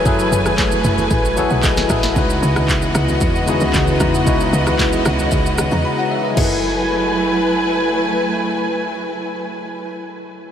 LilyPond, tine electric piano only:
\new Staff \with { instrumentName = "Tine electric piano" } { \time 4/4 \key fis \dorian \tempo 4 = 114 << { r4. b''8 gis''8 fis''8 dis''8 e''8 | r1 | r2 r8 fis''16 ais''16 b''16 <cis'' fis''>16 <b' e''>16 <ais' dis''>16~ | <ais' dis''>16 r2. r8. |
r1 | } \\ { <fis e' gis' a' b'>4. r4 <fis e' gis' a' cis''>4 <fis e' gis' a' b'>8 | <cis gis dis' e' fis' b'>4. r4 <cis gis dis' e' fis' gis'>4 <cis gis dis' e' fis' b'>8 | <cis gis dis' e' fis' b'>4. r2 r8 | <fis e' gis' a' b'>1~ |
<fis e' gis' a' b'>1 | } >> }